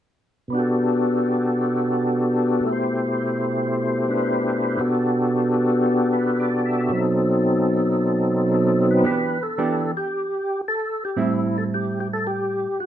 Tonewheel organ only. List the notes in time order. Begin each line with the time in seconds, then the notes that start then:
0.48 B2 B3
0.53 D4 F#4
0.57 G4 A4
2.61 B2 A3
2.67 E4 G4
2.72 C5
4.08 A3 D4 E4 B4
4.79 B2 B3 D4 F#4 G4 A4
6.13 B4
6.40 D5
6.65 E5
6.90 B2 F#3 C4 D#4
6.95 A4
8.54 A4
8.81 A4
8.91 B4
9.06 B4
9.43 A4
9.97 G4
10.68 A4
11.05 G4
11.22 E4
11.58 A4
11.74 G4
12.00 G4
12.13 A4
12.27 G4
12.80 F#4